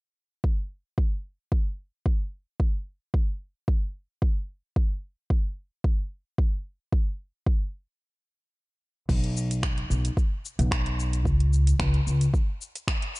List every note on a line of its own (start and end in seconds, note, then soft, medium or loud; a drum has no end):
0.44 kick medium
0.98 kick medium
1.52 kick medium
2.06 kick medium
2.60 kick medium
3.14 kick medium
3.68 kick loud
4.22 kick medium
4.76 kick medium
5.30 kick medium
5.84 kick loud
6.38 kick medium
6.93 kick medium
7.46 kick loud
9.09 9.83 B1 medium
9.09 kick medium
9.09 crash medium
9.09 cabasa soft
9.24 closed hi-hat soft
9.37 cabasa medium
9.51 closed hi-hat medium
9.51 cabasa soft
9.63 finger snap medium
9.63 kick loud
9.63 cabasa soft
9.78 closed hi-hat soft
9.90 10.08 B1 medium
9.90 cabasa medium
10.05 closed hi-hat medium
10.05 cabasa soft
10.17 kick loud
10.17 cabasa soft
10.45 cabasa medium
10.59 11.25 B1 medium
10.59 closed hi-hat medium
10.59 cabasa soft
10.71 finger snap loud
10.71 kick medium
10.71 cabasa soft
10.86 closed hi-hat soft
11.00 cabasa medium
11.13 closed hi-hat medium
11.13 cabasa soft
11.25 11.72 C#2 loud
11.25 kick loud
11.25 cabasa soft
11.40 closed hi-hat soft
11.53 cabasa medium
11.67 closed hi-hat medium
11.67 cabasa soft
11.79 11.97 C#2 medium
11.79 finger snap medium
11.79 kick loud
11.79 cabasa soft
11.94 closed hi-hat soft
12.07 12.24 C#2 medium
12.07 cabasa medium
12.21 closed hi-hat medium
12.21 cabasa soft
12.34 kick loud
12.34 cabasa soft
12.61 cabasa medium
12.75 closed hi-hat medium
12.75 cabasa soft
12.88 finger snap loud
12.88 kick loud
12.88 cabasa soft
13.02 closed hi-hat soft
13.16 cabasa medium